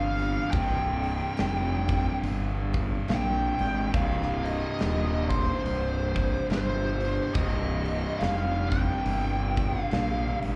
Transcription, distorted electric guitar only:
0, 0, Header, 1, 2, 480
1, 0, Start_track
1, 0, Key_signature, -3, "minor"
1, 0, Tempo, 853485
1, 298, Time_signature, 4, 2, 24, 8
1, 5937, End_track
2, 0, Start_track
2, 0, Title_t, "Distorted electric guitar"
2, 0, Program_c, 0, 30
2, 0, Note_on_c, 0, 36, 87
2, 0, Note_on_c, 0, 43, 94
2, 0, Note_on_c, 0, 48, 84
2, 283, Note_off_c, 0, 43, 0
2, 288, Note_off_c, 0, 36, 0
2, 291, Note_on_c, 0, 36, 86
2, 300, Note_on_c, 0, 43, 83
2, 303, Note_off_c, 0, 48, 0
2, 305, Note_on_c, 0, 48, 92
2, 2201, Note_off_c, 0, 43, 0
2, 2204, Note_off_c, 0, 36, 0
2, 2206, Note_on_c, 0, 36, 83
2, 2215, Note_on_c, 0, 43, 86
2, 2218, Note_off_c, 0, 48, 0
2, 2220, Note_on_c, 0, 48, 93
2, 4123, Note_off_c, 0, 36, 0
2, 4123, Note_off_c, 0, 43, 0
2, 4125, Note_on_c, 0, 36, 89
2, 4133, Note_on_c, 0, 43, 90
2, 4138, Note_off_c, 0, 48, 0
2, 4140, Note_on_c, 0, 48, 91
2, 5937, Note_off_c, 0, 36, 0
2, 5937, Note_off_c, 0, 43, 0
2, 5937, Note_off_c, 0, 48, 0
2, 5937, End_track
0, 0, End_of_file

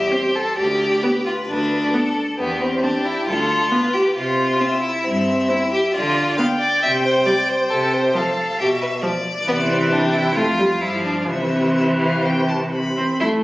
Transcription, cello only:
0, 0, Header, 1, 2, 480
1, 0, Start_track
1, 0, Key_signature, 0, "major"
1, 0, Tempo, 452148
1, 616, Time_signature, 4, 2, 24, 8
1, 3485, Tempo, 442804
1, 11165, Tempo, 472441
1, 14282, End_track
2, 0, Start_track
2, 0, Title_t, "Cello"
2, 0, Program_c, 0, 42
2, 619, Note_on_c, 0, 38, 52
2, 1018, Note_off_c, 0, 38, 0
2, 1571, Note_on_c, 0, 38, 51
2, 1967, Note_off_c, 0, 38, 0
2, 2537, Note_on_c, 0, 40, 50
2, 2935, Note_off_c, 0, 40, 0
2, 3484, Note_on_c, 0, 38, 54
2, 3884, Note_off_c, 0, 38, 0
2, 4447, Note_on_c, 0, 48, 52
2, 4851, Note_off_c, 0, 48, 0
2, 5409, Note_on_c, 0, 43, 58
2, 5811, Note_off_c, 0, 43, 0
2, 6372, Note_on_c, 0, 50, 59
2, 6770, Note_off_c, 0, 50, 0
2, 7332, Note_on_c, 0, 48, 58
2, 7728, Note_off_c, 0, 48, 0
2, 8288, Note_on_c, 0, 48, 59
2, 8685, Note_off_c, 0, 48, 0
2, 9244, Note_on_c, 0, 47, 56
2, 9636, Note_off_c, 0, 47, 0
2, 10195, Note_on_c, 0, 48, 59
2, 11160, Note_on_c, 0, 41, 55
2, 11176, Note_off_c, 0, 48, 0
2, 11624, Note_on_c, 0, 43, 49
2, 11639, Note_off_c, 0, 41, 0
2, 12098, Note_off_c, 0, 43, 0
2, 12104, Note_on_c, 0, 48, 52
2, 13772, Note_off_c, 0, 48, 0
2, 13807, Note_on_c, 0, 60, 51
2, 13889, Note_off_c, 0, 60, 0
2, 14045, Note_on_c, 0, 64, 64
2, 14126, Note_off_c, 0, 64, 0
2, 14282, End_track
0, 0, End_of_file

